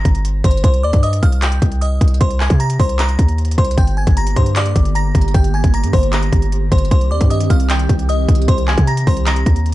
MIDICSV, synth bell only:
0, 0, Header, 1, 2, 480
1, 0, Start_track
1, 0, Tempo, 392157
1, 782, Time_signature, 4, 2, 24, 8
1, 11929, End_track
2, 0, Start_track
2, 0, Title_t, "Synth bell"
2, 0, Program_c, 0, 98
2, 0, Note_on_c, 0, 82, 90
2, 0, Note_on_c, 0, 94, 73
2, 496, Note_off_c, 0, 82, 0
2, 501, Note_off_c, 0, 94, 0
2, 541, Note_on_c, 0, 84, 87
2, 550, Note_on_c, 0, 72, 65
2, 762, Note_off_c, 0, 84, 0
2, 767, Note_off_c, 0, 72, 0
2, 781, Note_on_c, 0, 84, 87
2, 791, Note_on_c, 0, 72, 65
2, 1002, Note_off_c, 0, 84, 0
2, 1007, Note_off_c, 0, 72, 0
2, 1021, Note_on_c, 0, 86, 81
2, 1031, Note_on_c, 0, 74, 65
2, 1242, Note_off_c, 0, 86, 0
2, 1247, Note_off_c, 0, 74, 0
2, 1259, Note_on_c, 0, 87, 92
2, 1269, Note_on_c, 0, 75, 70
2, 1481, Note_off_c, 0, 87, 0
2, 1486, Note_off_c, 0, 75, 0
2, 1500, Note_on_c, 0, 89, 83
2, 1510, Note_on_c, 0, 77, 65
2, 1722, Note_off_c, 0, 89, 0
2, 1727, Note_off_c, 0, 77, 0
2, 1740, Note_on_c, 0, 91, 87
2, 1750, Note_on_c, 0, 79, 70
2, 2192, Note_off_c, 0, 91, 0
2, 2197, Note_off_c, 0, 79, 0
2, 2220, Note_on_c, 0, 87, 86
2, 2230, Note_on_c, 0, 75, 68
2, 2672, Note_off_c, 0, 87, 0
2, 2677, Note_off_c, 0, 75, 0
2, 2700, Note_on_c, 0, 84, 89
2, 2710, Note_on_c, 0, 72, 71
2, 2922, Note_off_c, 0, 84, 0
2, 2927, Note_off_c, 0, 72, 0
2, 2942, Note_on_c, 0, 80, 75
2, 2951, Note_on_c, 0, 92, 65
2, 3162, Note_off_c, 0, 80, 0
2, 3167, Note_off_c, 0, 92, 0
2, 3181, Note_on_c, 0, 82, 90
2, 3191, Note_on_c, 0, 94, 71
2, 3402, Note_off_c, 0, 82, 0
2, 3407, Note_off_c, 0, 94, 0
2, 3421, Note_on_c, 0, 84, 82
2, 3431, Note_on_c, 0, 72, 65
2, 3642, Note_off_c, 0, 84, 0
2, 3647, Note_off_c, 0, 72, 0
2, 3660, Note_on_c, 0, 82, 94
2, 3670, Note_on_c, 0, 94, 73
2, 4338, Note_off_c, 0, 82, 0
2, 4343, Note_off_c, 0, 94, 0
2, 4384, Note_on_c, 0, 84, 86
2, 4394, Note_on_c, 0, 72, 68
2, 4603, Note_off_c, 0, 84, 0
2, 4609, Note_off_c, 0, 72, 0
2, 4622, Note_on_c, 0, 79, 88
2, 4632, Note_on_c, 0, 91, 68
2, 4843, Note_off_c, 0, 79, 0
2, 4848, Note_off_c, 0, 91, 0
2, 4860, Note_on_c, 0, 80, 75
2, 4870, Note_on_c, 0, 92, 63
2, 5081, Note_off_c, 0, 80, 0
2, 5087, Note_off_c, 0, 92, 0
2, 5103, Note_on_c, 0, 82, 96
2, 5113, Note_on_c, 0, 94, 67
2, 5323, Note_off_c, 0, 82, 0
2, 5329, Note_off_c, 0, 94, 0
2, 5341, Note_on_c, 0, 84, 83
2, 5352, Note_on_c, 0, 72, 61
2, 5562, Note_off_c, 0, 84, 0
2, 5568, Note_off_c, 0, 72, 0
2, 5582, Note_on_c, 0, 86, 90
2, 5592, Note_on_c, 0, 74, 70
2, 6033, Note_off_c, 0, 86, 0
2, 6038, Note_off_c, 0, 74, 0
2, 6061, Note_on_c, 0, 82, 85
2, 6071, Note_on_c, 0, 94, 74
2, 6512, Note_off_c, 0, 82, 0
2, 6518, Note_off_c, 0, 94, 0
2, 6539, Note_on_c, 0, 79, 84
2, 6549, Note_on_c, 0, 91, 67
2, 6761, Note_off_c, 0, 79, 0
2, 6767, Note_off_c, 0, 91, 0
2, 6780, Note_on_c, 0, 80, 83
2, 6790, Note_on_c, 0, 92, 59
2, 7002, Note_off_c, 0, 80, 0
2, 7007, Note_off_c, 0, 92, 0
2, 7024, Note_on_c, 0, 82, 89
2, 7034, Note_on_c, 0, 94, 69
2, 7244, Note_off_c, 0, 82, 0
2, 7249, Note_off_c, 0, 94, 0
2, 7260, Note_on_c, 0, 84, 75
2, 7270, Note_on_c, 0, 72, 62
2, 7482, Note_off_c, 0, 84, 0
2, 7487, Note_off_c, 0, 72, 0
2, 7498, Note_on_c, 0, 82, 90
2, 7508, Note_on_c, 0, 94, 74
2, 8177, Note_off_c, 0, 82, 0
2, 8182, Note_off_c, 0, 94, 0
2, 8222, Note_on_c, 0, 84, 88
2, 8231, Note_on_c, 0, 72, 68
2, 8442, Note_off_c, 0, 84, 0
2, 8448, Note_off_c, 0, 72, 0
2, 8460, Note_on_c, 0, 84, 85
2, 8470, Note_on_c, 0, 72, 66
2, 8681, Note_off_c, 0, 84, 0
2, 8687, Note_off_c, 0, 72, 0
2, 8701, Note_on_c, 0, 86, 83
2, 8711, Note_on_c, 0, 74, 66
2, 8922, Note_off_c, 0, 86, 0
2, 8927, Note_off_c, 0, 74, 0
2, 8939, Note_on_c, 0, 87, 90
2, 8949, Note_on_c, 0, 75, 71
2, 9161, Note_off_c, 0, 87, 0
2, 9166, Note_off_c, 0, 75, 0
2, 9180, Note_on_c, 0, 89, 83
2, 9190, Note_on_c, 0, 77, 64
2, 9402, Note_off_c, 0, 89, 0
2, 9407, Note_off_c, 0, 77, 0
2, 9421, Note_on_c, 0, 91, 88
2, 9431, Note_on_c, 0, 79, 72
2, 9872, Note_off_c, 0, 91, 0
2, 9878, Note_off_c, 0, 79, 0
2, 9900, Note_on_c, 0, 87, 87
2, 9910, Note_on_c, 0, 75, 70
2, 10352, Note_off_c, 0, 87, 0
2, 10357, Note_off_c, 0, 75, 0
2, 10380, Note_on_c, 0, 84, 94
2, 10390, Note_on_c, 0, 72, 70
2, 10602, Note_off_c, 0, 84, 0
2, 10607, Note_off_c, 0, 72, 0
2, 10622, Note_on_c, 0, 80, 75
2, 10631, Note_on_c, 0, 92, 67
2, 10842, Note_off_c, 0, 80, 0
2, 10848, Note_off_c, 0, 92, 0
2, 10861, Note_on_c, 0, 82, 91
2, 10872, Note_on_c, 0, 94, 74
2, 11082, Note_off_c, 0, 82, 0
2, 11088, Note_off_c, 0, 94, 0
2, 11101, Note_on_c, 0, 84, 81
2, 11111, Note_on_c, 0, 72, 63
2, 11322, Note_off_c, 0, 84, 0
2, 11327, Note_off_c, 0, 72, 0
2, 11341, Note_on_c, 0, 82, 94
2, 11351, Note_on_c, 0, 94, 73
2, 11929, Note_off_c, 0, 82, 0
2, 11929, Note_off_c, 0, 94, 0
2, 11929, End_track
0, 0, End_of_file